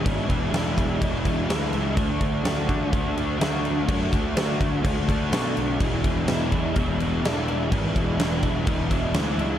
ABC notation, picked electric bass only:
X:1
M:4/4
L:1/8
Q:1/4=125
K:Emix
V:1 name="Picked electric bass" clef=bass
G,,, E,,, E,,, E,,, E,,, E,,, D,, C,, | D,, D,, D,, D, D,,2 D,,2 | F,, D,, D,, D,, D,, D,, B,, B,,, | E,,, E,,, E,,, E,, E,,,2 E,,,2 |
G,,, E,,, E,,, E,,, E,,, E,,, D,, C,, |]